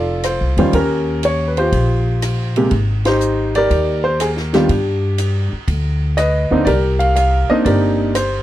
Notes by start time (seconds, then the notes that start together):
Already playing: F1 F4 A4 D5
0.23 C5, cross-stick, hi-hat pedal, ride
0.41 C2
0.57 E2 D#3 G3 C#4 F4 C5, ride
0.73 D#2 C#4 G4 A#4, kick, ride
1.23 C#5, hi-hat pedal, ride
1.48 B4
1.57 F4 G4 C5, ride
1.72 A#1, kick, ride
2.22 cross-stick, hi-hat pedal, ride
2.56 C3 G#3 A#3 G4, ride
2.71 G#1, kick, ride
3.05 D#4 G4 C5, snare, ride
3.21 hi-hat pedal
3.55 G4 A#4 D5, ride
3.70 D#2, kick, ride
4.04 C5
4.20 G#4, cross-stick, hi-hat pedal, ride
4.37 snare
4.53 D#3 G3 B3 D4 F4 G4, snare, ride
4.69 G2, kick, ride
5.18 hi-hat pedal, ride
5.53 muted upright bass stroke
5.68 D2, kick, ride
6.17 B4 D#5, cross-stick, hi-hat pedal, ride
6.51 D2 D3 A#3 C4 D#4
6.65 C2 G4 A#4 D5, kick, ride
6.99 F5, ride
7.16 F5, hi-hat pedal, ride
7.49 A#3 C4 D4 D#4 D#5, muted upright bass stroke
7.65 G1 G4 A#4 D5, kick, ride
8.15 C5, cross-stick, hi-hat pedal, ride